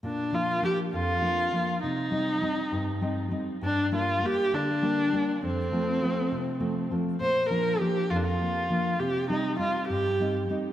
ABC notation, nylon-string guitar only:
X:1
M:6/8
L:1/8
Q:3/8=67
K:Bb
V:1 name="Nylon-string guitar"
B,, [F,B,D] [F,B,D] F,, [F,B,D] [F,B,D] | C, [G,CE] [G,CE] G,, [G,CE] [G,CE] | G,, [G,B,D] [G,B,D] D, [G,B,D] [G,B,D] | F,, [F,A,C] [F,A,C] C, [F,A,C] [F,A,C] |
B,, [F,B,D] [F,B,D] F,, [F,B,D] [F,B,D] | C, [G,CE] [G,CE] G,, [G,CE] [G,CE] |]